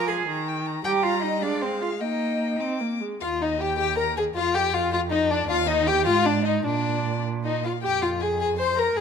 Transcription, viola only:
Already playing: F3
0.27 D#3
0.85 G3
1.42 G#3
2.00 A#3
2.61 C4
2.80 A#3
3.01 G#3
3.20 F4
3.41 D#4
3.60 G4
3.78 G4
3.97 A#4
4.17 G#4
4.36 F4
4.55 G4
4.73 F4
4.92 F4
5.11 D#4
5.31 D4
5.48 F4
5.68 D#4
5.88 G4
6.06 F4
6.25 D4
6.45 D#4
6.64 D4
7.45 D#4
7.64 F4
7.83 G4
8.02 F4
8.22 G#4
8.40 G#4
8.59 C5
8.77 A#4
8.96 G#4

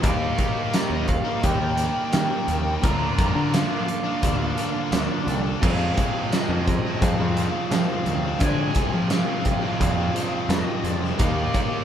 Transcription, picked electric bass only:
0.03 D#2
0.90 D#2
1.44 D#2
1.61 D#2
2.14 D#3
2.48 D#2
2.83 D2
3.18 F2
3.35 D3
4.23 D2
4.92 D2
5.27 C2
5.63 F2
6.49 F2
7.02 F2
7.20 F2
7.71 F3
8.06 D2
8.41 D3
8.76 C2
8.94 F3
9.80 F2
10.49 F2
10.84 F2
11.19 D#2

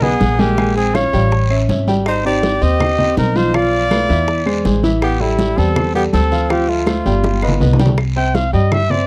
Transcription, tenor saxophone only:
0.02 B3
0.40 A#3
0.77 C4
0.95 F4
2.08 D#4
2.26 G4
2.63 G4
3.18 D#4
3.37 D#4
3.55 F4
5.03 B3
5.21 G3
5.58 C4
5.95 B3
6.14 C4
6.50 C4
6.68 A3

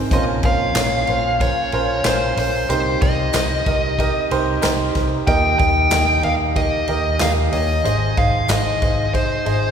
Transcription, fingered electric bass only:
0.12 A#1
0.44 A#1
0.75 A#1
1.08 A#1
1.73 A#1
2.05 A#1
2.37 A#1
2.69 C2
3.02 C2
3.34 C2
3.66 C2
4.31 C2
4.64 C2
4.95 C2
5.28 D#2
5.60 D#2
5.93 D#2
6.25 D#2
6.89 D#2
7.22 D#2
7.53 D#2
7.85 G#1
8.18 G#1
8.49 G#1
8.82 G#1
9.46 G#1

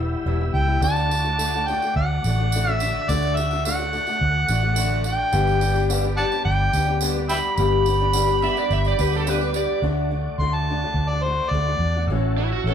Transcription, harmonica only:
0.54 G5
0.84 A5
1.67 G5
1.96 F#5
2.71 E5
3.09 D5
3.37 E5
3.65 F#5
5.07 G5
6.17 D5 F#5 A5
6.45 G5
7.29 E5 G5 B5
7.56 B5
10.39 C6
10.54 A5
11.09 D5
11.23 C5
11.50 D5

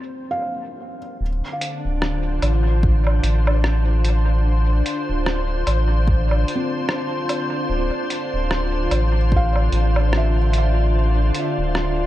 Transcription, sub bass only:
1.21 D1
1.85 D1
2.42 A1
3.23 A1
5.09 D1
5.67 A1
7.70 D1
8.34 D1
8.91 A1
9.72 A1
11.58 D1

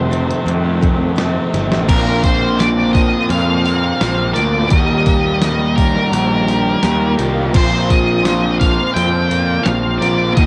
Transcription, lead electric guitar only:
Already playing: C5
1.89 A#4
2.24 C5
2.59 D5
2.93 D#5
3.30 F5
4.34 D5
4.71 D#5
5.76 A#4
7.56 C5
7.90 D#5
8.60 F5
8.94 G5
9.63 F5
9.99 D5
10.35 D#5

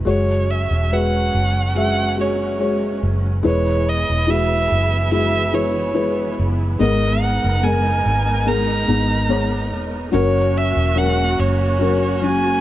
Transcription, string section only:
0.06 F#3 G#3 C#4
3.45 E3 B3 E4 G#4
6.80 G#3 D#4 A#4
10.13 A#3 C#4 F#4

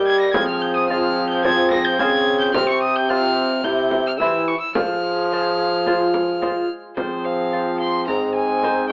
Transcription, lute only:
Already playing: G3 A#3 G4 D#5
0.35 F3
0.90 G#3 F4 C5
1.44 G#3 F4 C5
1.99 C#3 G#3 F4 C5
2.55 C3
3.10 F4 C5
3.65 C3
4.21 E3 E4 C5
4.76 F3
5.32 G#3 F4 C5
5.87 G#3 F4 C5
6.41 G#3 F4 C5
6.98 F3
7.53 F4 C5
8.08 G#2
8.64 D#4 C5

